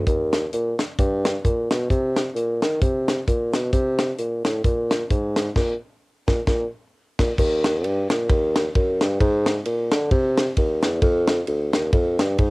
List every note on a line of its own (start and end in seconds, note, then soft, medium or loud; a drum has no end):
0.07 0.46 D#2 loud
0.07 kick medium
0.07 closed hi-hat medium
0.33 snare loud
0.33 closed hi-hat medium
0.53 0.75 A#2 medium
0.53 closed hi-hat medium
0.79 snare medium
0.79 closed hi-hat medium
0.99 1.38 G2 loud
0.99 kick loud
0.99 closed hi-hat medium
1.25 snare loud
1.25 closed hi-hat medium
1.45 1.67 A#2 medium
1.45 kick medium
1.45 closed hi-hat medium
1.71 1.87 B2 medium
1.71 snare loud
1.71 closed hi-hat medium
1.90 2.29 C3 loud
1.90 kick medium
1.90 closed hi-hat medium
2.16 snare loud
2.16 closed hi-hat medium
2.35 2.58 A#2 medium
2.35 closed hi-hat medium
2.62 2.79 D#3 medium
2.62 snare loud
2.62 closed hi-hat medium
2.82 3.21 C3 medium
2.82 kick loud
2.82 closed hi-hat medium
3.08 snare loud
3.08 closed hi-hat medium
3.28 3.50 A#2 medium
3.28 kick medium
3.28 closed hi-hat medium
3.54 3.71 B2 medium
3.54 snare loud
3.54 closed hi-hat medium
3.73 4.12 C3 loud
3.73 kick medium
3.73 closed hi-hat medium
3.99 snare loud
3.99 closed hi-hat medium
4.18 4.41 A#2 medium
4.18 closed hi-hat medium
4.45 4.62 A2 medium
4.45 snare loud
4.45 closed hi-hat medium
4.64 5.03 A#2 medium
4.64 kick loud
4.64 closed hi-hat medium
4.91 snare loud
4.91 closed hi-hat medium
5.10 5.49 G#2 medium
5.10 kick medium
5.10 closed hi-hat medium
5.36 snare loud
5.36 closed hi-hat medium
5.56 5.74 A#2 loud
5.56 kick loud
5.56 snare medium
5.56 crash medium
6.27 6.41 A#2 medium
6.27 kick loud
6.27 snare medium
6.47 6.65 A#2 loud
6.47 kick loud
6.47 snare loud
7.19 7.32 A#2 medium
7.19 kick loud
7.19 snare loud
7.19 crash medium
7.38 7.86 D#2 loud
7.38 kick medium
7.38 crash loud
7.64 snare loud
7.64 ride medium
7.84 8.06 G2 loud
7.84 ride medium
8.10 8.26 A#2 medium
8.10 snare loud
8.10 ride medium
8.29 8.68 D#2 loud
8.29 kick loud
8.29 ride medium
8.56 snare loud
8.56 ride medium
8.75 8.97 F#2 medium
8.75 kick loud
8.75 ride medium
9.01 9.18 G2 medium
9.01 snare loud
9.01 ride medium
9.20 9.59 G#2 loud
9.20 kick loud
9.20 ride medium
9.46 snare loud
9.46 ride medium
9.65 9.88 A#2 medium
9.65 ride medium
9.92 10.09 D3 medium
9.92 snare loud
9.92 ride medium
10.11 10.50 C3 loud
10.11 kick loud
10.11 ride medium
10.37 snare loud
10.37 ride medium
10.57 10.79 D#2 medium
10.57 kick medium
10.57 ride medium
10.83 10.99 E2 medium
10.83 snare loud
10.83 ride medium
11.02 11.41 F2 loud
11.02 kick loud
11.02 ride medium
11.28 snare loud
11.28 ride medium
11.47 11.70 D2 medium
11.47 ride medium
11.73 11.90 D#2 medium
11.73 snare loud
11.73 ride medium
11.93 12.15 F2 loud
11.93 kick loud
11.93 ride medium
12.19 12.36 G2 medium
12.19 snare loud
12.19 ride medium
12.38 12.50 G#2 medium
12.38 kick medium
12.38 ride medium